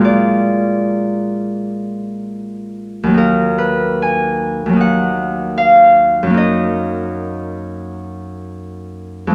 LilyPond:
<<
  \new Staff \with { instrumentName = "Harp" } { \time 4/4 \key ees \minor \tempo 4 = 77 <bes' d''>1 | bes'8 ces''8 aes''4 ges''4 f''4 | ees''1 | }
  \new Staff \with { instrumentName = "Harp" } { \time 4/4 \key ees \minor <bes, aes bes f'>1 | <ees, ges bes ees'>2 <ees, ges bes ees'>2 | <ges, ges bes ees'>1 | }
>>